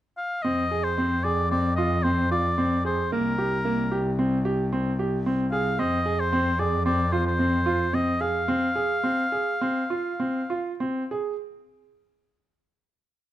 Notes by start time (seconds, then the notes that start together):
0.17 F5
0.42 F2 C4 D#5
0.71 G#4
0.84 C5
0.98 C4
1.24 G#4 D5
1.51 C4 D5
1.76 F4 D#5
2.03 C4 C5
2.31 F4 D5
2.58 C4
2.85 G#4 C5
3.12 C2 A#3 A#4
3.38 G4
3.65 A#3
3.91 G4
4.19 C4
4.45 G4
4.72 C4
4.99 G4
5.26 C4
5.52 G#4 F5
5.79 F2 C4 D#5
6.06 G#4
6.20 C5
6.33 C4
6.59 G#4 D5
6.85 C4 D5
7.12 F4 C5
7.27 C5
7.39 C4
7.66 F4
7.93 C4 D#5
8.21 G#4 F5
8.48 C4
8.76 G#4
9.03 C4
9.32 G#4
9.61 C4
9.90 F4
10.20 C4
10.50 F4
10.80 C4
11.11 G#4